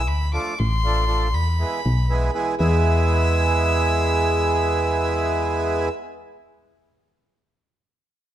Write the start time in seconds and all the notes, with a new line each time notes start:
0.07 D2 B5
0.33 F3 A3 D4 F4 A4 D6
0.59 A1 C6
0.84 F3 A3 D4 F4 A4
1.07 F3 A3 D4 F4 A4
1.33 E2 B5
1.59 E3 G#3 B3 E4 G#4
1.86 B1
2.09 E3 G#3 B3 E4 G#4
2.33 E3 G#3 B3 E4 G#4
2.59 E2 G#3 B3 E4 G#4 E6